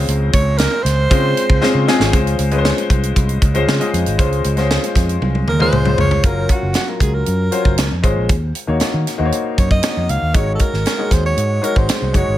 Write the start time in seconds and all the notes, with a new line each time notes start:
Already playing: G#3 C4 C#4 F4 C5
0.08 C#2, closed hi-hat
0.33 C#2 C#5, kick, closed hi-hat
0.58 A#4, snare, closed hi-hat
0.83 C#2 C5, snare, closed hi-hat
1.10 C#3 G#3 C4 C#4 F4 C5, kick, closed hi-hat
1.37 closed hi-hat
1.50 C#2, kick
1.61 G#3 C4 C#4 F4 C5, snare
1.74 C#3
1.87 G#3 C4 C#4 F4 G#4, snare
2.00 G#1, snare
2.13 C#2 G#3 C#4 F4 C5, kick, closed hi-hat
2.27 closed hi-hat
2.39 C#2, closed hi-hat
2.51 G#3 C#4 F4 B4, closed hi-hat
2.58 C5
2.65 snare
2.78 closed hi-hat
2.90 C2, kick, closed hi-hat
3.03 closed hi-hat
3.16 C2, kick, closed hi-hat
3.29 closed hi-hat
3.42 C#2, kick, closed hi-hat
3.54 G#3 C#4 F4 C5, closed hi-hat
3.68 C#3, snare
3.80 G#3 C#4 F4 D#5, closed hi-hat
3.93 F2, closed hi-hat
4.06 G#1, closed hi-hat
4.18 C#2 G#3 C#4 F4 C5, kick, closed hi-hat
4.32 closed hi-hat
4.44 C#2, closed hi-hat
4.57 G#3 C#4 F4 C5, snare, closed hi-hat
4.71 snare
4.84 closed hi-hat
4.95 F2, kick, snare, closed hi-hat
5.09 closed hi-hat
5.21 C2, high tom
5.35 high tom
5.47 D#2 A#4, mid tom
5.59 G#3 C#4 F4 C5, mid tom
5.73 C#2, mid tom
5.85 G#3 C#4 F4 C5, mid tom
5.98 C#2 C#5, floor tom
6.11 floor tom
6.23 F#1 F#3 C#4 F4 A#4, kick, closed hi-hat
6.49 F#4, kick, closed hi-hat
6.62 F#1
6.74 F#4, snare, closed hi-hat
6.87 F#3 C#4 F4 A#4
7.00 C#2 G#4, kick, closed hi-hat
7.14 A#4
7.26 F#2, closed hi-hat
7.51 F#3 C#4 F4 C5, closed hi-hat
7.65 F#1, kick
7.78 C#2, snare, closed hi-hat
7.92 F2
8.02 G#1 G#3 C#4 F4 C5, kick, closed hi-hat
8.16 A#1
8.29 D#2, kick, closed hi-hat
8.55 closed hi-hat
8.67 D#2 A#3 D#4 F#4 C#5
8.80 muted fingered electric bass stroke, snare, closed hi-hat
8.94 D#3
9.07 snare, closed hi-hat
9.18 D#2 A#3 D#4 F#4 C5
9.25 C#5
9.32 closed hi-hat
9.58 F#2 C#5, kick, closed hi-hat
9.71 D#5, kick
9.82 A#3 D#4 F#4 C#5, snare, closed hi-hat
9.97 F2
10.09 C#2 F5, closed hi-hat
10.22 D#2
10.34 G#1 G#3 D#4 F#4 C#5, kick, closed hi-hat
10.55 A4
10.59 A#4, kick, closed hi-hat
10.73 G#1, snare
10.86 snare, closed hi-hat
10.97 G#3 D#4 F#4 C#5
11.11 D#2 C5, kick, snare, closed hi-hat
11.26 C#5
11.37 G#2, closed hi-hat
11.61 G#3 D#4 F#4 A#4 C#5, closed hi-hat
11.76 G#1 C5, kick
11.89 snare, closed hi-hat
12.02 C2
12.13 F#1 G#3 D#4 F#4 C#5, kick, closed hi-hat
12.28 G#1